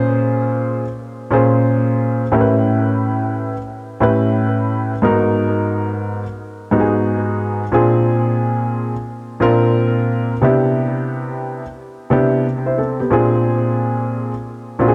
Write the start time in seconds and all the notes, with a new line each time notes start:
Already playing: A#2 C#4 F4 G#4 C5
1.31 A#2 C#4 F4 G#4 C5
2.32 A2 C#4 E4 G4 A#4
2.41 B4
4.00 A2 C#4 E4 G4 B4
5.02 G#2 B3 D#4 F#4 A#4
6.71 G#2 B3 D#4 F#4 G4
6.80 G#4
7.72 A#2 C4 D4 F4 G#4
9.40 A#2 C4 D4 F4 A#4
10.41 C3 B3 D4 E4 G4
12.10 C3 B3 D4 E4 G4
12.66 E4 C5
12.78 C4 A4
13.00 B3 G4
13.10 A#2 C4 D4 F4 G#4
14.79 A#2 C4 D4 F4 F#4
14.88 G#4